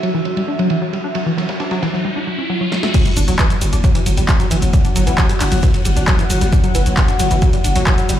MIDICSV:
0, 0, Header, 1, 7, 480
1, 0, Start_track
1, 0, Tempo, 447761
1, 1235, Time_signature, 4, 2, 24, 8
1, 8787, End_track
2, 0, Start_track
2, 0, Title_t, "Analog synth pad"
2, 0, Program_c, 0, 89
2, 0, Note_on_c, 0, 61, 90
2, 0, Note_on_c, 0, 66, 84
2, 0, Note_on_c, 0, 76, 80
2, 2195, Note_off_c, 0, 61, 0
2, 2195, Note_off_c, 0, 76, 0
2, 2196, Note_off_c, 0, 66, 0
2, 4699, Note_on_c, 0, 78, 80
2, 8538, Note_on_c, 0, 83, 81
2, 8563, Note_off_c, 0, 78, 0
2, 8787, Note_off_c, 0, 83, 0
2, 8787, End_track
3, 0, Start_track
3, 0, Title_t, "Synth drone"
3, 0, Program_c, 1, 95
3, 0, Note_on_c, 1, 54, 73
3, 0, Note_on_c, 1, 66, 72
3, 2195, Note_off_c, 1, 54, 0
3, 2195, Note_off_c, 1, 66, 0
3, 3156, Note_on_c, 1, 54, 79
3, 3157, Note_on_c, 1, 66, 81
3, 8787, Note_off_c, 1, 54, 0
3, 8787, Note_off_c, 1, 66, 0
3, 8787, End_track
4, 0, Start_track
4, 0, Title_t, "Synth arpeggio sound"
4, 0, Program_c, 2, 84
4, 35, Note_on_c, 2, 54, 96
4, 121, Note_off_c, 2, 54, 0
4, 155, Note_on_c, 2, 52, 102
4, 212, Note_off_c, 2, 52, 0
4, 275, Note_on_c, 2, 54, 78
4, 362, Note_off_c, 2, 54, 0
4, 394, Note_on_c, 2, 55, 75
4, 452, Note_off_c, 2, 55, 0
4, 515, Note_on_c, 2, 62, 76
4, 550, Note_off_c, 2, 62, 0
4, 635, Note_on_c, 2, 54, 97
4, 721, Note_off_c, 2, 54, 0
4, 755, Note_on_c, 2, 52, 105
4, 813, Note_off_c, 2, 52, 0
4, 875, Note_on_c, 2, 54, 75
4, 962, Note_off_c, 2, 54, 0
4, 996, Note_on_c, 2, 55, 77
4, 1053, Note_off_c, 2, 55, 0
4, 1116, Note_on_c, 2, 62, 77
4, 1150, Note_off_c, 2, 62, 0
4, 1235, Note_on_c, 2, 54, 97
4, 1321, Note_off_c, 2, 54, 0
4, 1355, Note_on_c, 2, 52, 94
4, 1413, Note_off_c, 2, 52, 0
4, 1475, Note_on_c, 2, 54, 77
4, 1562, Note_off_c, 2, 54, 0
4, 1595, Note_on_c, 2, 55, 72
4, 1652, Note_off_c, 2, 55, 0
4, 1715, Note_on_c, 2, 62, 84
4, 1750, Note_off_c, 2, 62, 0
4, 1835, Note_on_c, 2, 54, 106
4, 1922, Note_off_c, 2, 54, 0
4, 1956, Note_on_c, 2, 52, 98
4, 2013, Note_off_c, 2, 52, 0
4, 2076, Note_on_c, 2, 54, 75
4, 2162, Note_off_c, 2, 54, 0
4, 2196, Note_on_c, 2, 55, 77
4, 2253, Note_off_c, 2, 55, 0
4, 2316, Note_on_c, 2, 62, 78
4, 2350, Note_off_c, 2, 62, 0
4, 2436, Note_on_c, 2, 54, 74
4, 2493, Note_off_c, 2, 54, 0
4, 2556, Note_on_c, 2, 61, 74
4, 2590, Note_off_c, 2, 61, 0
4, 2676, Note_on_c, 2, 54, 81
4, 2733, Note_off_c, 2, 54, 0
4, 2796, Note_on_c, 2, 54, 80
4, 2853, Note_off_c, 2, 54, 0
4, 2916, Note_on_c, 2, 54, 78
4, 2973, Note_off_c, 2, 54, 0
4, 3036, Note_on_c, 2, 57, 106
4, 3093, Note_off_c, 2, 57, 0
4, 3156, Note_on_c, 2, 54, 82
4, 3242, Note_off_c, 2, 54, 0
4, 3276, Note_on_c, 2, 55, 76
4, 3333, Note_off_c, 2, 55, 0
4, 3396, Note_on_c, 2, 62, 77
4, 3430, Note_off_c, 2, 62, 0
4, 3515, Note_on_c, 2, 54, 101
4, 3601, Note_off_c, 2, 54, 0
4, 3635, Note_on_c, 2, 52, 102
4, 3693, Note_off_c, 2, 52, 0
4, 3756, Note_on_c, 2, 54, 78
4, 3842, Note_off_c, 2, 54, 0
4, 3875, Note_on_c, 2, 55, 77
4, 3933, Note_off_c, 2, 55, 0
4, 3995, Note_on_c, 2, 62, 76
4, 4030, Note_off_c, 2, 62, 0
4, 4114, Note_on_c, 2, 54, 99
4, 4201, Note_off_c, 2, 54, 0
4, 4235, Note_on_c, 2, 52, 107
4, 4293, Note_off_c, 2, 52, 0
4, 4355, Note_on_c, 2, 54, 75
4, 4442, Note_off_c, 2, 54, 0
4, 4474, Note_on_c, 2, 55, 75
4, 4532, Note_off_c, 2, 55, 0
4, 4594, Note_on_c, 2, 62, 82
4, 4629, Note_off_c, 2, 62, 0
4, 4714, Note_on_c, 2, 54, 100
4, 4801, Note_off_c, 2, 54, 0
4, 4833, Note_on_c, 2, 52, 108
4, 4892, Note_off_c, 2, 52, 0
4, 4954, Note_on_c, 2, 54, 80
4, 5041, Note_off_c, 2, 54, 0
4, 5074, Note_on_c, 2, 55, 81
4, 5132, Note_off_c, 2, 55, 0
4, 5194, Note_on_c, 2, 62, 77
4, 5229, Note_off_c, 2, 62, 0
4, 5314, Note_on_c, 2, 54, 104
4, 5401, Note_off_c, 2, 54, 0
4, 5435, Note_on_c, 2, 52, 104
4, 5493, Note_off_c, 2, 52, 0
4, 5555, Note_on_c, 2, 54, 83
4, 5641, Note_off_c, 2, 54, 0
4, 5675, Note_on_c, 2, 55, 77
4, 5733, Note_off_c, 2, 55, 0
4, 5795, Note_on_c, 2, 62, 80
4, 5830, Note_off_c, 2, 62, 0
4, 5915, Note_on_c, 2, 54, 97
4, 6001, Note_off_c, 2, 54, 0
4, 6035, Note_on_c, 2, 52, 100
4, 6093, Note_off_c, 2, 52, 0
4, 6155, Note_on_c, 2, 54, 79
4, 6241, Note_off_c, 2, 54, 0
4, 6275, Note_on_c, 2, 55, 76
4, 6333, Note_off_c, 2, 55, 0
4, 6395, Note_on_c, 2, 62, 76
4, 6430, Note_off_c, 2, 62, 0
4, 6515, Note_on_c, 2, 54, 99
4, 6602, Note_off_c, 2, 54, 0
4, 6635, Note_on_c, 2, 52, 101
4, 6693, Note_off_c, 2, 52, 0
4, 6755, Note_on_c, 2, 54, 81
4, 6842, Note_off_c, 2, 54, 0
4, 6874, Note_on_c, 2, 55, 76
4, 6932, Note_off_c, 2, 55, 0
4, 6994, Note_on_c, 2, 62, 82
4, 7029, Note_off_c, 2, 62, 0
4, 7114, Note_on_c, 2, 54, 104
4, 7201, Note_off_c, 2, 54, 0
4, 7234, Note_on_c, 2, 52, 102
4, 7292, Note_off_c, 2, 52, 0
4, 7355, Note_on_c, 2, 54, 77
4, 7441, Note_off_c, 2, 54, 0
4, 7474, Note_on_c, 2, 55, 85
4, 7532, Note_off_c, 2, 55, 0
4, 7594, Note_on_c, 2, 62, 77
4, 7629, Note_off_c, 2, 62, 0
4, 7714, Note_on_c, 2, 54, 107
4, 7801, Note_off_c, 2, 54, 0
4, 7835, Note_on_c, 2, 52, 99
4, 7893, Note_off_c, 2, 52, 0
4, 7955, Note_on_c, 2, 54, 82
4, 8042, Note_off_c, 2, 54, 0
4, 8076, Note_on_c, 2, 55, 77
4, 8133, Note_off_c, 2, 55, 0
4, 8195, Note_on_c, 2, 62, 77
4, 8230, Note_off_c, 2, 62, 0
4, 8315, Note_on_c, 2, 54, 96
4, 8402, Note_off_c, 2, 54, 0
4, 8435, Note_on_c, 2, 52, 104
4, 8493, Note_off_c, 2, 52, 0
4, 8555, Note_on_c, 2, 54, 77
4, 8641, Note_off_c, 2, 54, 0
4, 8676, Note_on_c, 2, 55, 82
4, 8733, Note_off_c, 2, 55, 0
4, 8787, End_track
5, 0, Start_track
5, 0, Title_t, "808-style bass"
5, 0, Program_c, 3, 38
5, 3396, Note_on_c, 3, 30, 98
5, 3510, Note_off_c, 3, 30, 0
5, 3517, Note_on_c, 3, 30, 81
5, 3633, Note_off_c, 3, 30, 0
5, 3875, Note_on_c, 3, 30, 100
5, 3990, Note_off_c, 3, 30, 0
5, 3996, Note_on_c, 3, 30, 83
5, 4113, Note_off_c, 3, 30, 0
5, 4357, Note_on_c, 3, 30, 100
5, 4470, Note_off_c, 3, 30, 0
5, 4477, Note_on_c, 3, 30, 85
5, 4593, Note_off_c, 3, 30, 0
5, 4836, Note_on_c, 3, 30, 106
5, 4950, Note_off_c, 3, 30, 0
5, 4956, Note_on_c, 3, 30, 78
5, 5073, Note_off_c, 3, 30, 0
5, 5315, Note_on_c, 3, 30, 96
5, 5429, Note_off_c, 3, 30, 0
5, 5436, Note_on_c, 3, 30, 81
5, 5553, Note_off_c, 3, 30, 0
5, 5795, Note_on_c, 3, 30, 103
5, 5909, Note_off_c, 3, 30, 0
5, 5915, Note_on_c, 3, 30, 82
5, 6033, Note_off_c, 3, 30, 0
5, 6276, Note_on_c, 3, 30, 102
5, 6389, Note_off_c, 3, 30, 0
5, 6396, Note_on_c, 3, 30, 85
5, 6513, Note_off_c, 3, 30, 0
5, 6755, Note_on_c, 3, 30, 106
5, 6869, Note_off_c, 3, 30, 0
5, 6875, Note_on_c, 3, 30, 84
5, 6993, Note_off_c, 3, 30, 0
5, 7234, Note_on_c, 3, 30, 101
5, 7349, Note_off_c, 3, 30, 0
5, 7356, Note_on_c, 3, 30, 79
5, 7473, Note_off_c, 3, 30, 0
5, 7716, Note_on_c, 3, 30, 103
5, 7830, Note_off_c, 3, 30, 0
5, 7836, Note_on_c, 3, 30, 86
5, 7953, Note_off_c, 3, 30, 0
5, 8196, Note_on_c, 3, 30, 99
5, 8310, Note_off_c, 3, 30, 0
5, 8316, Note_on_c, 3, 30, 82
5, 8433, Note_off_c, 3, 30, 0
5, 8675, Note_on_c, 3, 30, 103
5, 8787, Note_off_c, 3, 30, 0
5, 8787, End_track
6, 0, Start_track
6, 0, Title_t, "Riser"
6, 0, Program_c, 4, 103
6, 0, Note_on_c, 4, 60, 72
6, 3155, Note_off_c, 4, 60, 0
6, 8787, End_track
7, 0, Start_track
7, 0, Title_t, "Drums"
7, 33, Note_on_c, 9, 51, 80
7, 140, Note_off_c, 9, 51, 0
7, 269, Note_on_c, 9, 51, 61
7, 376, Note_off_c, 9, 51, 0
7, 395, Note_on_c, 9, 51, 78
7, 503, Note_off_c, 9, 51, 0
7, 632, Note_on_c, 9, 51, 64
7, 739, Note_off_c, 9, 51, 0
7, 748, Note_on_c, 9, 51, 66
7, 855, Note_off_c, 9, 51, 0
7, 999, Note_on_c, 9, 51, 56
7, 1106, Note_off_c, 9, 51, 0
7, 1230, Note_on_c, 9, 51, 94
7, 1337, Note_off_c, 9, 51, 0
7, 1474, Note_on_c, 9, 38, 95
7, 1480, Note_on_c, 9, 51, 76
7, 1581, Note_off_c, 9, 38, 0
7, 1587, Note_off_c, 9, 51, 0
7, 1594, Note_on_c, 9, 51, 77
7, 1601, Note_on_c, 9, 38, 110
7, 1701, Note_off_c, 9, 51, 0
7, 1708, Note_off_c, 9, 38, 0
7, 1713, Note_on_c, 9, 38, 98
7, 1713, Note_on_c, 9, 51, 66
7, 1820, Note_off_c, 9, 38, 0
7, 1820, Note_off_c, 9, 51, 0
7, 1832, Note_on_c, 9, 51, 66
7, 1835, Note_on_c, 9, 38, 103
7, 1939, Note_off_c, 9, 51, 0
7, 1942, Note_off_c, 9, 38, 0
7, 1955, Note_on_c, 9, 38, 93
7, 1957, Note_on_c, 9, 51, 78
7, 2062, Note_off_c, 9, 38, 0
7, 2064, Note_off_c, 9, 51, 0
7, 2072, Note_on_c, 9, 38, 38
7, 2179, Note_off_c, 9, 38, 0
7, 2916, Note_on_c, 9, 38, 65
7, 3023, Note_off_c, 9, 38, 0
7, 3035, Note_on_c, 9, 38, 78
7, 3142, Note_off_c, 9, 38, 0
7, 3155, Note_on_c, 9, 42, 72
7, 3155, Note_on_c, 9, 49, 110
7, 3155, Note_on_c, 9, 82, 41
7, 3156, Note_on_c, 9, 36, 124
7, 3156, Note_on_c, 9, 51, 90
7, 3262, Note_off_c, 9, 42, 0
7, 3262, Note_off_c, 9, 49, 0
7, 3262, Note_off_c, 9, 82, 0
7, 3263, Note_off_c, 9, 36, 0
7, 3263, Note_off_c, 9, 51, 0
7, 3275, Note_on_c, 9, 42, 65
7, 3275, Note_on_c, 9, 82, 26
7, 3382, Note_off_c, 9, 42, 0
7, 3382, Note_off_c, 9, 82, 0
7, 3390, Note_on_c, 9, 51, 65
7, 3395, Note_on_c, 9, 46, 114
7, 3395, Note_on_c, 9, 82, 76
7, 3497, Note_off_c, 9, 51, 0
7, 3503, Note_off_c, 9, 46, 0
7, 3503, Note_off_c, 9, 82, 0
7, 3516, Note_on_c, 9, 42, 69
7, 3516, Note_on_c, 9, 82, 30
7, 3623, Note_off_c, 9, 42, 0
7, 3623, Note_off_c, 9, 82, 0
7, 3636, Note_on_c, 9, 36, 114
7, 3636, Note_on_c, 9, 39, 122
7, 3636, Note_on_c, 9, 42, 71
7, 3636, Note_on_c, 9, 82, 44
7, 3639, Note_on_c, 9, 38, 109
7, 3639, Note_on_c, 9, 51, 87
7, 3743, Note_off_c, 9, 36, 0
7, 3743, Note_off_c, 9, 39, 0
7, 3743, Note_off_c, 9, 42, 0
7, 3743, Note_off_c, 9, 82, 0
7, 3746, Note_off_c, 9, 38, 0
7, 3746, Note_off_c, 9, 51, 0
7, 3750, Note_on_c, 9, 38, 48
7, 3756, Note_on_c, 9, 42, 70
7, 3756, Note_on_c, 9, 82, 29
7, 3857, Note_off_c, 9, 38, 0
7, 3863, Note_off_c, 9, 42, 0
7, 3863, Note_off_c, 9, 82, 0
7, 3874, Note_on_c, 9, 51, 69
7, 3875, Note_on_c, 9, 46, 110
7, 3875, Note_on_c, 9, 82, 72
7, 3981, Note_off_c, 9, 51, 0
7, 3982, Note_off_c, 9, 46, 0
7, 3982, Note_off_c, 9, 82, 0
7, 3996, Note_on_c, 9, 42, 72
7, 3996, Note_on_c, 9, 82, 30
7, 4103, Note_off_c, 9, 42, 0
7, 4103, Note_off_c, 9, 82, 0
7, 4116, Note_on_c, 9, 36, 114
7, 4116, Note_on_c, 9, 42, 69
7, 4116, Note_on_c, 9, 82, 40
7, 4118, Note_on_c, 9, 51, 94
7, 4223, Note_off_c, 9, 36, 0
7, 4223, Note_off_c, 9, 42, 0
7, 4223, Note_off_c, 9, 82, 0
7, 4226, Note_off_c, 9, 51, 0
7, 4236, Note_on_c, 9, 42, 72
7, 4343, Note_off_c, 9, 42, 0
7, 4354, Note_on_c, 9, 51, 63
7, 4355, Note_on_c, 9, 46, 105
7, 4355, Note_on_c, 9, 82, 75
7, 4461, Note_off_c, 9, 51, 0
7, 4462, Note_off_c, 9, 46, 0
7, 4462, Note_off_c, 9, 82, 0
7, 4468, Note_on_c, 9, 51, 46
7, 4475, Note_on_c, 9, 42, 71
7, 4475, Note_on_c, 9, 82, 30
7, 4576, Note_off_c, 9, 51, 0
7, 4582, Note_off_c, 9, 42, 0
7, 4582, Note_off_c, 9, 82, 0
7, 4590, Note_on_c, 9, 38, 105
7, 4590, Note_on_c, 9, 51, 97
7, 4595, Note_on_c, 9, 36, 124
7, 4595, Note_on_c, 9, 39, 127
7, 4595, Note_on_c, 9, 42, 75
7, 4595, Note_on_c, 9, 82, 42
7, 4697, Note_off_c, 9, 51, 0
7, 4698, Note_off_c, 9, 38, 0
7, 4702, Note_off_c, 9, 36, 0
7, 4703, Note_off_c, 9, 39, 0
7, 4703, Note_off_c, 9, 42, 0
7, 4703, Note_off_c, 9, 82, 0
7, 4716, Note_on_c, 9, 42, 71
7, 4716, Note_on_c, 9, 82, 29
7, 4823, Note_off_c, 9, 42, 0
7, 4823, Note_off_c, 9, 82, 0
7, 4832, Note_on_c, 9, 51, 69
7, 4835, Note_on_c, 9, 46, 110
7, 4835, Note_on_c, 9, 82, 76
7, 4939, Note_off_c, 9, 51, 0
7, 4943, Note_off_c, 9, 46, 0
7, 4943, Note_off_c, 9, 82, 0
7, 4956, Note_on_c, 9, 42, 74
7, 4956, Note_on_c, 9, 82, 31
7, 5063, Note_off_c, 9, 42, 0
7, 5063, Note_off_c, 9, 82, 0
7, 5073, Note_on_c, 9, 51, 82
7, 5075, Note_on_c, 9, 36, 127
7, 5075, Note_on_c, 9, 42, 70
7, 5075, Note_on_c, 9, 82, 44
7, 5180, Note_off_c, 9, 51, 0
7, 5182, Note_off_c, 9, 36, 0
7, 5183, Note_off_c, 9, 42, 0
7, 5183, Note_off_c, 9, 82, 0
7, 5196, Note_on_c, 9, 42, 68
7, 5196, Note_on_c, 9, 82, 28
7, 5303, Note_off_c, 9, 42, 0
7, 5303, Note_off_c, 9, 82, 0
7, 5314, Note_on_c, 9, 51, 66
7, 5315, Note_on_c, 9, 46, 118
7, 5315, Note_on_c, 9, 82, 75
7, 5422, Note_off_c, 9, 51, 0
7, 5423, Note_off_c, 9, 46, 0
7, 5423, Note_off_c, 9, 82, 0
7, 5436, Note_on_c, 9, 42, 72
7, 5436, Note_on_c, 9, 82, 31
7, 5543, Note_off_c, 9, 42, 0
7, 5543, Note_off_c, 9, 82, 0
7, 5552, Note_on_c, 9, 51, 96
7, 5555, Note_on_c, 9, 36, 124
7, 5555, Note_on_c, 9, 39, 122
7, 5555, Note_on_c, 9, 42, 72
7, 5555, Note_on_c, 9, 82, 41
7, 5556, Note_on_c, 9, 38, 119
7, 5660, Note_off_c, 9, 51, 0
7, 5662, Note_off_c, 9, 36, 0
7, 5662, Note_off_c, 9, 39, 0
7, 5662, Note_off_c, 9, 42, 0
7, 5662, Note_off_c, 9, 82, 0
7, 5663, Note_off_c, 9, 38, 0
7, 5676, Note_on_c, 9, 42, 73
7, 5676, Note_on_c, 9, 82, 30
7, 5783, Note_off_c, 9, 42, 0
7, 5783, Note_off_c, 9, 82, 0
7, 5795, Note_on_c, 9, 39, 67
7, 5795, Note_on_c, 9, 46, 117
7, 5795, Note_on_c, 9, 82, 70
7, 5798, Note_off_c, 9, 46, 0
7, 5798, Note_on_c, 9, 46, 79
7, 5902, Note_off_c, 9, 39, 0
7, 5902, Note_off_c, 9, 82, 0
7, 5905, Note_off_c, 9, 46, 0
7, 5915, Note_on_c, 9, 42, 74
7, 5915, Note_on_c, 9, 82, 31
7, 6022, Note_off_c, 9, 42, 0
7, 6022, Note_off_c, 9, 82, 0
7, 6035, Note_on_c, 9, 36, 123
7, 6035, Note_on_c, 9, 42, 70
7, 6035, Note_on_c, 9, 82, 41
7, 6037, Note_on_c, 9, 51, 94
7, 6142, Note_off_c, 9, 36, 0
7, 6142, Note_off_c, 9, 42, 0
7, 6142, Note_off_c, 9, 82, 0
7, 6144, Note_off_c, 9, 51, 0
7, 6155, Note_on_c, 9, 42, 72
7, 6262, Note_off_c, 9, 42, 0
7, 6267, Note_on_c, 9, 51, 65
7, 6275, Note_on_c, 9, 46, 111
7, 6275, Note_on_c, 9, 82, 76
7, 6374, Note_off_c, 9, 51, 0
7, 6382, Note_off_c, 9, 46, 0
7, 6382, Note_off_c, 9, 82, 0
7, 6395, Note_on_c, 9, 42, 70
7, 6395, Note_on_c, 9, 82, 30
7, 6502, Note_off_c, 9, 42, 0
7, 6502, Note_off_c, 9, 82, 0
7, 6514, Note_on_c, 9, 38, 118
7, 6514, Note_on_c, 9, 39, 122
7, 6514, Note_on_c, 9, 42, 74
7, 6514, Note_on_c, 9, 82, 44
7, 6515, Note_on_c, 9, 36, 124
7, 6515, Note_on_c, 9, 51, 94
7, 6621, Note_off_c, 9, 38, 0
7, 6622, Note_off_c, 9, 36, 0
7, 6622, Note_off_c, 9, 39, 0
7, 6622, Note_off_c, 9, 42, 0
7, 6622, Note_off_c, 9, 51, 0
7, 6622, Note_off_c, 9, 82, 0
7, 6636, Note_on_c, 9, 42, 72
7, 6636, Note_on_c, 9, 82, 29
7, 6743, Note_off_c, 9, 42, 0
7, 6743, Note_off_c, 9, 82, 0
7, 6754, Note_on_c, 9, 46, 119
7, 6754, Note_on_c, 9, 82, 74
7, 6757, Note_on_c, 9, 51, 70
7, 6862, Note_off_c, 9, 46, 0
7, 6862, Note_off_c, 9, 82, 0
7, 6864, Note_off_c, 9, 51, 0
7, 6875, Note_on_c, 9, 38, 39
7, 6875, Note_on_c, 9, 42, 71
7, 6875, Note_on_c, 9, 82, 33
7, 6982, Note_off_c, 9, 38, 0
7, 6982, Note_off_c, 9, 42, 0
7, 6982, Note_off_c, 9, 82, 0
7, 6995, Note_on_c, 9, 36, 127
7, 6995, Note_on_c, 9, 42, 75
7, 6995, Note_on_c, 9, 82, 46
7, 6999, Note_on_c, 9, 51, 89
7, 7102, Note_off_c, 9, 36, 0
7, 7102, Note_off_c, 9, 42, 0
7, 7102, Note_off_c, 9, 82, 0
7, 7107, Note_off_c, 9, 51, 0
7, 7115, Note_on_c, 9, 42, 65
7, 7115, Note_on_c, 9, 82, 29
7, 7222, Note_off_c, 9, 42, 0
7, 7222, Note_off_c, 9, 82, 0
7, 7231, Note_on_c, 9, 51, 62
7, 7235, Note_on_c, 9, 46, 118
7, 7235, Note_on_c, 9, 82, 77
7, 7338, Note_off_c, 9, 51, 0
7, 7342, Note_off_c, 9, 46, 0
7, 7342, Note_off_c, 9, 82, 0
7, 7355, Note_on_c, 9, 42, 65
7, 7355, Note_on_c, 9, 82, 32
7, 7462, Note_off_c, 9, 42, 0
7, 7462, Note_off_c, 9, 82, 0
7, 7475, Note_on_c, 9, 36, 122
7, 7475, Note_on_c, 9, 39, 120
7, 7475, Note_on_c, 9, 42, 71
7, 7475, Note_on_c, 9, 82, 41
7, 7482, Note_on_c, 9, 38, 127
7, 7482, Note_on_c, 9, 51, 91
7, 7582, Note_off_c, 9, 36, 0
7, 7582, Note_off_c, 9, 39, 0
7, 7582, Note_off_c, 9, 42, 0
7, 7582, Note_off_c, 9, 82, 0
7, 7589, Note_off_c, 9, 38, 0
7, 7589, Note_off_c, 9, 51, 0
7, 7592, Note_on_c, 9, 38, 44
7, 7594, Note_on_c, 9, 42, 70
7, 7594, Note_on_c, 9, 82, 30
7, 7699, Note_off_c, 9, 38, 0
7, 7701, Note_off_c, 9, 42, 0
7, 7701, Note_off_c, 9, 82, 0
7, 7713, Note_on_c, 9, 46, 118
7, 7713, Note_on_c, 9, 82, 78
7, 7714, Note_on_c, 9, 51, 77
7, 7821, Note_off_c, 9, 46, 0
7, 7821, Note_off_c, 9, 51, 0
7, 7821, Note_off_c, 9, 82, 0
7, 7834, Note_on_c, 9, 42, 69
7, 7834, Note_on_c, 9, 82, 32
7, 7942, Note_off_c, 9, 42, 0
7, 7942, Note_off_c, 9, 82, 0
7, 7954, Note_on_c, 9, 42, 68
7, 7954, Note_on_c, 9, 51, 91
7, 7954, Note_on_c, 9, 82, 40
7, 7955, Note_on_c, 9, 36, 120
7, 8061, Note_off_c, 9, 42, 0
7, 8061, Note_off_c, 9, 51, 0
7, 8061, Note_off_c, 9, 82, 0
7, 8062, Note_off_c, 9, 36, 0
7, 8074, Note_on_c, 9, 42, 72
7, 8182, Note_off_c, 9, 42, 0
7, 8191, Note_on_c, 9, 51, 64
7, 8195, Note_on_c, 9, 46, 113
7, 8195, Note_on_c, 9, 82, 74
7, 8298, Note_off_c, 9, 51, 0
7, 8302, Note_off_c, 9, 46, 0
7, 8302, Note_off_c, 9, 82, 0
7, 8314, Note_on_c, 9, 42, 72
7, 8314, Note_on_c, 9, 82, 30
7, 8316, Note_on_c, 9, 51, 48
7, 8421, Note_off_c, 9, 42, 0
7, 8421, Note_off_c, 9, 82, 0
7, 8423, Note_off_c, 9, 51, 0
7, 8432, Note_on_c, 9, 51, 95
7, 8434, Note_on_c, 9, 39, 121
7, 8434, Note_on_c, 9, 42, 72
7, 8434, Note_on_c, 9, 82, 43
7, 8435, Note_on_c, 9, 36, 123
7, 8439, Note_on_c, 9, 38, 108
7, 8539, Note_off_c, 9, 51, 0
7, 8541, Note_off_c, 9, 39, 0
7, 8541, Note_off_c, 9, 42, 0
7, 8541, Note_off_c, 9, 82, 0
7, 8542, Note_off_c, 9, 36, 0
7, 8546, Note_off_c, 9, 38, 0
7, 8554, Note_on_c, 9, 42, 69
7, 8554, Note_on_c, 9, 82, 29
7, 8662, Note_off_c, 9, 42, 0
7, 8662, Note_off_c, 9, 82, 0
7, 8674, Note_on_c, 9, 46, 112
7, 8674, Note_on_c, 9, 82, 78
7, 8675, Note_on_c, 9, 51, 71
7, 8781, Note_off_c, 9, 46, 0
7, 8781, Note_off_c, 9, 82, 0
7, 8782, Note_off_c, 9, 51, 0
7, 8787, End_track
0, 0, End_of_file